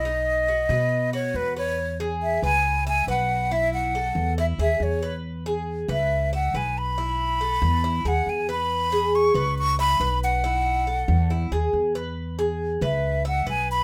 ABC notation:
X:1
M:4/4
L:1/16
Q:1/4=139
K:E
V:1 name="Flute"
d8- d2 c2 B2 c2- | c2 z2 e2 g4 g2 f4 | e2 f6 e2 e2 c3 z | z6 e4 f2 g2 b2- |
b8- b2 f2 g2 b2- | b4 c'4 c'2 b4 f2- | f8- f2 z6 | z6 e4 f2 g2 b2 |]
V:2 name="Cuban tres"
D4 F2 B4 F4 B2 | z2 G4 B4 e2 B4 | E4 A4 E2 G4 B2- | B2 G4 B4 e2 B4 |
E4 A4 E2 G4 B2- | B2 G4 B4 e2 B4 | E4 A4 E2 G4 B2- | B2 G4 B4 e2 B4 |]
V:3 name="Upright bass" clef=bass
B,,,6 B,,6 E,,4- | E,,6 C,,6 B,,,4- | B,,,6 E,,4 D,,2 E,,4- | E,,6 C,,6 B,,,4- |
B,,,6 E,,4 D,,2 E,,4- | E,,6 C,,6 B,,,4- | B,,,6 E,,4 D,,2 E,,4- | E,,6 C,,6 B,,,4 |]